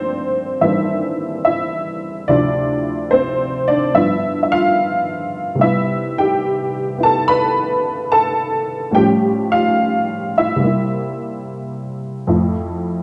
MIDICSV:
0, 0, Header, 1, 2, 480
1, 0, Start_track
1, 0, Tempo, 833333
1, 1313, Time_signature, 4, 2, 24, 8
1, 7504, End_track
2, 0, Start_track
2, 0, Title_t, "Honky-tonk piano"
2, 0, Program_c, 0, 3
2, 0, Control_c, 0, 64, 127
2, 0, Note_on_c, 0, 43, 53
2, 0, Note_on_c, 0, 50, 51
2, 0, Note_on_c, 0, 53, 48
2, 0, Note_on_c, 0, 57, 49
2, 0, Note_on_c, 0, 58, 48
2, 0, Note_on_c, 0, 60, 66
2, 0, Note_on_c, 0, 62, 61
2, 0, Note_on_c, 0, 72, 77
2, 0, Note_on_c, 0, 74, 87
2, 340, Note_off_c, 0, 60, 0
2, 353, Note_on_c, 0, 52, 44
2, 353, Note_on_c, 0, 76, 80
2, 356, Note_off_c, 0, 58, 0
2, 357, Note_on_c, 0, 55, 45
2, 364, Note_on_c, 0, 64, 63
2, 365, Note_on_c, 0, 58, 41
2, 368, Note_on_c, 0, 60, 39
2, 372, Note_off_c, 0, 72, 0
2, 375, Note_off_c, 0, 62, 0
2, 375, Note_on_c, 0, 62, 49
2, 815, Note_off_c, 0, 64, 0
2, 825, Note_off_c, 0, 76, 0
2, 834, Note_on_c, 0, 76, 87
2, 845, Note_on_c, 0, 64, 63
2, 1295, Note_off_c, 0, 64, 0
2, 1309, Note_off_c, 0, 43, 0
2, 1311, Note_off_c, 0, 52, 0
2, 1311, Note_off_c, 0, 53, 0
2, 1312, Note_off_c, 0, 50, 0
2, 1312, Note_off_c, 0, 55, 0
2, 1312, Note_off_c, 0, 74, 0
2, 1312, Note_on_c, 0, 74, 84
2, 1316, Note_off_c, 0, 58, 0
2, 1317, Note_off_c, 0, 57, 0
2, 1317, Note_on_c, 0, 38, 58
2, 1317, Note_on_c, 0, 48, 56
2, 1318, Note_off_c, 0, 60, 0
2, 1319, Note_off_c, 0, 62, 0
2, 1319, Control_c, 0, 64, 0
2, 1320, Note_on_c, 0, 53, 51
2, 1322, Note_on_c, 0, 64, 66
2, 1326, Note_off_c, 0, 76, 0
2, 1327, Note_on_c, 0, 62, 70
2, 1414, Control_c, 0, 64, 127
2, 1775, Note_off_c, 0, 62, 0
2, 1790, Note_on_c, 0, 72, 87
2, 1801, Note_on_c, 0, 60, 70
2, 1805, Note_off_c, 0, 74, 0
2, 2102, Note_off_c, 0, 60, 0
2, 2118, Note_on_c, 0, 74, 85
2, 2126, Note_on_c, 0, 62, 66
2, 2129, Note_off_c, 0, 72, 0
2, 2262, Note_off_c, 0, 62, 0
2, 2266, Note_off_c, 0, 53, 0
2, 2269, Note_on_c, 0, 43, 54
2, 2271, Note_off_c, 0, 38, 0
2, 2271, Note_on_c, 0, 50, 52
2, 2272, Note_off_c, 0, 48, 0
2, 2272, Note_on_c, 0, 59, 48
2, 2273, Note_off_c, 0, 74, 0
2, 2274, Note_off_c, 0, 64, 0
2, 2274, Note_on_c, 0, 76, 91
2, 2275, Note_on_c, 0, 53, 58
2, 2277, Control_c, 0, 64, 0
2, 2287, Note_on_c, 0, 64, 71
2, 2371, Control_c, 0, 64, 127
2, 2533, Note_off_c, 0, 64, 0
2, 2542, Note_off_c, 0, 76, 0
2, 2550, Note_on_c, 0, 76, 66
2, 2602, Note_off_c, 0, 76, 0
2, 2602, Note_on_c, 0, 77, 97
2, 2614, Note_on_c, 0, 65, 75
2, 3198, Note_on_c, 0, 48, 50
2, 3212, Note_off_c, 0, 65, 0
2, 3219, Note_on_c, 0, 55, 46
2, 3227, Note_off_c, 0, 43, 0
2, 3228, Note_off_c, 0, 50, 0
2, 3229, Note_off_c, 0, 59, 0
2, 3230, Note_off_c, 0, 53, 0
2, 3232, Note_on_c, 0, 76, 88
2, 3235, Control_c, 0, 64, 0
2, 3243, Note_on_c, 0, 59, 50
2, 3243, Note_on_c, 0, 64, 75
2, 3248, Note_off_c, 0, 77, 0
2, 3254, Note_off_c, 0, 64, 0
2, 3262, Note_on_c, 0, 64, 50
2, 3320, Control_c, 0, 64, 127
2, 3562, Note_on_c, 0, 79, 92
2, 3569, Note_off_c, 0, 76, 0
2, 3572, Note_on_c, 0, 67, 72
2, 4010, Note_off_c, 0, 59, 0
2, 4018, Note_on_c, 0, 59, 44
2, 4022, Note_off_c, 0, 67, 0
2, 4024, Note_off_c, 0, 64, 0
2, 4033, Note_on_c, 0, 64, 52
2, 4051, Note_on_c, 0, 81, 97
2, 4054, Note_off_c, 0, 79, 0
2, 4060, Note_on_c, 0, 69, 67
2, 4184, Note_off_c, 0, 81, 0
2, 4189, Note_off_c, 0, 69, 0
2, 4193, Note_on_c, 0, 83, 103
2, 4202, Note_on_c, 0, 71, 76
2, 4652, Note_off_c, 0, 71, 0
2, 4675, Note_on_c, 0, 81, 96
2, 4679, Note_on_c, 0, 69, 80
2, 4685, Note_off_c, 0, 83, 0
2, 5129, Note_off_c, 0, 81, 0
2, 5132, Note_off_c, 0, 55, 0
2, 5132, Note_off_c, 0, 69, 0
2, 5133, Note_on_c, 0, 45, 58
2, 5134, Note_off_c, 0, 48, 0
2, 5140, Note_on_c, 0, 55, 48
2, 5144, Note_off_c, 0, 59, 0
2, 5152, Note_off_c, 0, 64, 0
2, 5153, Note_on_c, 0, 79, 96
2, 5154, Note_on_c, 0, 61, 50
2, 5157, Control_c, 0, 64, 0
2, 5159, Note_on_c, 0, 53, 58
2, 5161, Note_on_c, 0, 67, 77
2, 5227, Note_off_c, 0, 79, 0
2, 5234, Note_off_c, 0, 67, 0
2, 5252, Control_c, 0, 64, 127
2, 5482, Note_on_c, 0, 77, 91
2, 5493, Note_on_c, 0, 65, 74
2, 5940, Note_off_c, 0, 77, 0
2, 5945, Note_off_c, 0, 65, 0
2, 5977, Note_on_c, 0, 76, 88
2, 5984, Note_on_c, 0, 64, 68
2, 6083, Note_on_c, 0, 48, 55
2, 6093, Note_off_c, 0, 55, 0
2, 6102, Note_on_c, 0, 55, 52
2, 6104, Note_off_c, 0, 45, 0
2, 6115, Note_off_c, 0, 61, 0
2, 6118, Note_off_c, 0, 53, 0
2, 6121, Control_c, 0, 64, 0
2, 6124, Note_on_c, 0, 58, 52
2, 6135, Note_off_c, 0, 64, 0
2, 6144, Note_on_c, 0, 64, 55
2, 6233, Control_c, 0, 64, 127
2, 6912, Note_off_c, 0, 76, 0
2, 7063, Note_off_c, 0, 48, 0
2, 7069, Note_on_c, 0, 41, 58
2, 7070, Note_off_c, 0, 64, 0
2, 7073, Note_off_c, 0, 55, 0
2, 7073, Note_on_c, 0, 53, 49
2, 7076, Note_on_c, 0, 57, 47
2, 7079, Note_on_c, 0, 64, 55
2, 7084, Note_off_c, 0, 58, 0
2, 7086, Control_c, 0, 64, 0
2, 7194, Control_c, 0, 64, 127
2, 7504, Note_off_c, 0, 41, 0
2, 7504, Note_off_c, 0, 53, 0
2, 7504, Note_off_c, 0, 57, 0
2, 7504, Note_off_c, 0, 64, 0
2, 7504, End_track
0, 0, End_of_file